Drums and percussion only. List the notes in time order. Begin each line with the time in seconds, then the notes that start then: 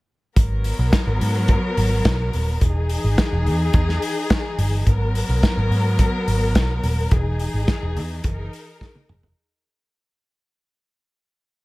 0.36 kick, closed hi-hat
0.64 open hi-hat
0.93 kick, snare, closed hi-hat
1.21 open hi-hat
1.48 kick, closed hi-hat
1.77 open hi-hat
2.05 kick, snare, closed hi-hat
2.33 open hi-hat
2.61 kick, closed hi-hat
2.89 open hi-hat
3.18 kick, snare, closed hi-hat
3.46 open hi-hat
3.73 kick, closed hi-hat
3.89 snare
4.02 open hi-hat
4.30 kick, snare, closed hi-hat
4.59 open hi-hat
4.87 kick, closed hi-hat
5.15 open hi-hat
5.43 kick, snare, closed hi-hat
5.72 open hi-hat
5.99 kick, closed hi-hat
6.28 open hi-hat
6.55 kick, snare, closed hi-hat
6.84 open hi-hat
7.11 kick, closed hi-hat
7.39 open hi-hat
7.68 kick, snare, closed hi-hat
7.97 open hi-hat
8.24 kick, closed hi-hat
8.53 open hi-hat
8.81 kick, snare
8.95 high tom
9.09 mid tom
9.23 floor tom